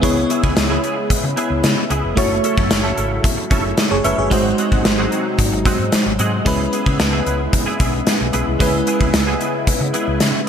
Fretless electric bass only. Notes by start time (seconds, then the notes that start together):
0.03 C#2
0.44 C#2
0.57 C#2
1.10 muted fretless electric bass stroke
1.24 C#3
1.50 C#2
1.64 C#3
1.90 C#2
2.04 F1
2.17 F#1
2.58 F#2
2.71 F#1
2.97 G#1
3.51 F#1
3.91 F#1
4.05 F#1
4.18 G1
4.31 G#1
4.72 G#1
4.85 G#1
5.39 G#2
5.52 G#1
5.79 G#2
5.92 muted fretless electric bass stroke
6.06 G#1
6.19 G#2
6.46 C#2
6.86 C#3
7.00 C#2
7.26 C#2
7.80 B1
8.21 B1
8.34 B1
8.47 C2
8.60 C#2
9.01 C#2
9.14 C#2
9.67 muted fretless electric bass stroke
9.81 C#3
10.08 C#2
10.21 C#3